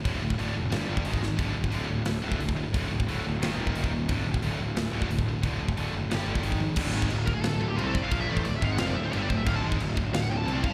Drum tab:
CC |----------------|----------------|----------------|----------------|
HH |o---o---o---o---|o---o---o---o---|o---o---o---o---|o---o---o---o---|
SD |--------o-----o-|--------o-------|--------o-------|--------o-------|
T1 |----------------|----------------|----------------|----------------|
BD |o--o-------o-o--|o--o-------o-o--|o--o-------o-o--|o--o-------o-o--|

CC |----------------|x---x---x---x---|x---x---x---x---|x---x---x---x---|
HH |o---o---o---o---|----------------|----------------|----------------|
SD |--------o-------|--------o-------|--------o-------|--------o-------|
T1 |--------------o-|----------------|----------------|----------------|
BD |o--o-------o-o--|o--o--o-------o-|o--o--o-------o-|o--o--o-------o-|